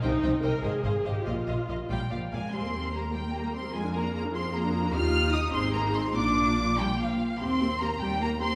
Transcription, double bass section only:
\new Staff \with { instrumentName = "Double bass section" } { \clef bass \time 6/8 \key ees \major \tempo 4. = 98 c,8 c,8 c,8 aes,,8 aes,,8 aes,,8 | bes,,8 bes,,8 bes,,8 bes,,8 bes,,8 bes,,8 | ees,2. | f,2. |
ees,4. aes,,4. | bes,,2~ bes,,8 r8 | ees,4. ees,4. | }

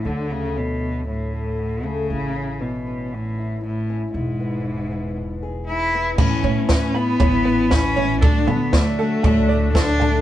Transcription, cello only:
\new Staff \with { instrumentName = "Cello" } { \clef bass \time 4/4 \key a \major \tempo 4 = 118 d8 cis8 b,4 a,4. cis8~ | cis4 b,4 a,4 a,4 | gis,2. e'4 | cis'4 cis'8 b4. cis'4 |
d'8 b8 a2 d'4 | }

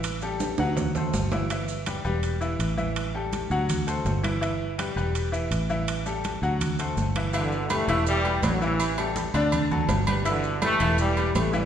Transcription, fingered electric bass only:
\new Staff \with { instrumentName = "Fingered electric bass" } { \clef bass \time 4/4 \key g \major \tempo 4 = 164 a,,4. d,4. g,,4~ | g,,4. e,,4. a,,4~ | a,,4. d,4. g,,4~ | g,,4. e,,4. a,,4~ |
a,,4. d,4. g,,4~ | g,,4. e,,4. a,,4~ | a,,4. d,4. g,,4~ | g,,4. e,,4. a,,4 | }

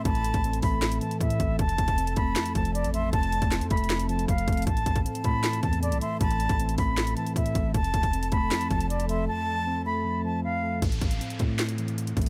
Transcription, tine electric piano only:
\new Staff \with { instrumentName = "Tine electric piano" } { \clef bass \time 4/4 \key a \minor \tempo 4 = 156 <a, e a>4 c'8 a8 a,8 e4 a8 | f,4 c'8 a8 f,8 f4 a8 | f,4 c'8 a8 f,8 f4 a8 | a,4 c'8 a8 a,8 e4 a8 |
a,4 c'8 a8 a,8 e4 a8 | f,4 c'8 a8 f,8 f4 a8 | f,4 c'8 a8 f,8 f4 a8 | a,4 c'8 a8 a,8 e4 a8 | }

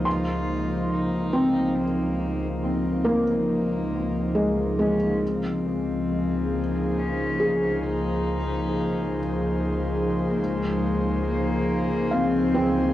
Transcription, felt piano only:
<<
  \new Staff \with { instrumentName = "Felt piano" } { \time 3/4 \key des \major \tempo 4 = 70 c'''2 r4 | r2 aes4~ | aes4 r4. aes'8~ | aes'4. r4. |
r2 f''4 | }
  \new Staff \with { instrumentName = "Felt piano" } { \time 3/4 \key des \major r4. c'4.~ | c'8 bes2 aes8~ | aes4. r4. | r2. |
r2 r8 c'8 | }
>>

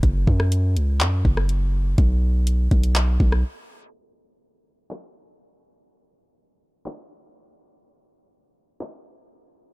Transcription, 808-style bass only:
\new Staff \with { instrumentName = "808-style bass" } { \clef bass \time 4/4 \key fis \mixolydian \tempo 4 = 123 fis,,8 fis,4 cis,8 fis,8 fis,,4. | b,,4. b,,4 b,,8 r4 | r1 | r1 |
r1 | }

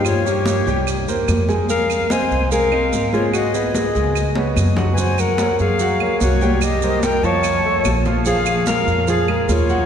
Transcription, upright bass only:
\new Staff \with { instrumentName = "Upright bass" } { \clef bass \time 4/4 \key bes \minor \tempo 4 = 146 g,4. c,4 e,8 f,4~ | f,4. c,4. aes,,4~ | aes,,4. des,4. ges,4~ | ges,4. ges,4. c,4~ |
c,4. f,4. bes,,4~ | bes,,4. f,4. ees,4 | }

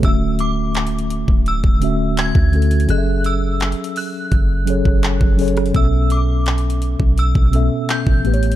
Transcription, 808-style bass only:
\new Staff \with { instrumentName = "808-style bass" } { \clef bass \time 4/4 \key b \dorian \tempo 4 = 84 d,,4.~ d,,16 d,,8 d,,4 d,8. | fis,,4~ fis,,16 r8. fis,,8. fis,,8 fis,,8. | b,,4.~ b,,16 b,,8 b,,8 r8 a,,8. | }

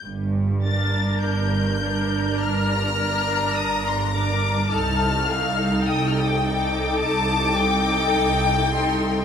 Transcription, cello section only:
\new Staff \with { instrumentName = "Cello section" } { \clef bass \time 4/4 \key g \minor \tempo 4 = 52 g,4 g,4 g,4 g,4 | c,4 c,4 c,4 c,4 | }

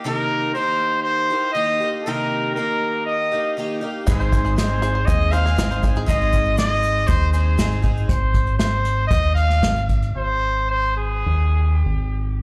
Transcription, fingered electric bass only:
\new Staff \with { instrumentName = "Fingered electric bass" } { \clef bass \time 4/4 \key aes \major \tempo 4 = 119 r1 | r1 | aes,,2 ees,4 aes,,4 | aes,,2 ees,4 aes,,4 |
aes,,2 ees,4 aes,,4 | aes,,2 ees,4 aes,,4 | }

